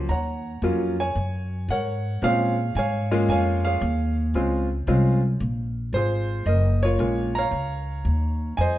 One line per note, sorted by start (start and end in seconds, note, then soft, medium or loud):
0.00 0.13 C6 loud
0.09 0.61 D#2 medium
0.09 0.99 C#5 medium
0.09 1.13 F#5 medium
0.09 0.59 A#5 medium
0.62 1.14 F2 medium
0.62 0.95 F#3 medium
0.62 0.95 A#3 medium
0.62 0.95 C#4 medium
0.62 0.96 F4 medium
1.00 1.70 C#5 medium
1.00 1.66 G#5 loud
1.15 1.67 F#2 medium
1.68 2.20 G#2 medium
1.68 2.20 A#4 medium
1.68 2.20 C#5 medium
1.68 2.25 F#5 medium
2.22 2.74 A#2 medium
2.22 2.55 G#3 medium
2.22 2.55 C4 medium
2.22 2.55 C#4 medium
2.22 2.55 F4 medium
2.22 3.26 G#4 medium
2.22 2.77 C#5 medium
2.22 2.77 F5 loud
2.75 3.27 G#2 medium
2.75 3.30 C#5 medium
2.75 3.30 F5 medium
2.75 3.25 G#5 medium
3.11 3.78 G#3 medium
3.11 3.78 A#3 medium
3.11 3.78 C#4 medium
3.11 3.78 F4 medium
3.28 3.80 F2 medium
3.28 3.65 C#5 medium
3.28 3.63 F5 medium
3.28 3.38 G#5 loud
3.65 4.67 G#4 medium
3.65 4.67 C#5 medium
3.65 4.14 F5 medium
3.81 4.33 D#2 loud
4.34 4.86 C#2 medium
4.34 4.67 G#3 medium
4.34 4.67 C4 medium
4.34 4.67 C#4 medium
4.34 4.67 F4 medium
4.87 5.39 C2 medium
4.87 5.20 G#3 medium
4.87 5.20 C4 medium
4.87 5.20 C#4 medium
4.87 5.20 F4 medium
5.40 5.92 A#1 medium
5.93 6.45 G#1 medium
5.93 6.44 F4 medium
5.93 6.44 G#4 medium
5.93 6.48 C5 medium
6.46 6.98 F#1 medium
6.46 6.84 A#4 medium
6.46 6.83 D#5 medium
6.83 6.98 F4 medium
6.83 7.86 A#4 medium
6.83 7.37 C#5 loud
6.99 7.51 A#1 medium
6.99 7.32 G#3 medium
6.99 7.32 A#3 medium
6.99 7.32 C#4 soft
6.99 7.32 F4 medium
7.35 8.56 C#5 medium
7.35 8.56 F5 medium
7.35 8.62 A#5 loud
7.51 8.03 C#2 medium
8.05 8.57 D#2 medium
8.57 8.78 F2 medium
8.57 8.78 C5 medium
8.57 8.78 D#5 medium
8.57 8.78 G#5 loud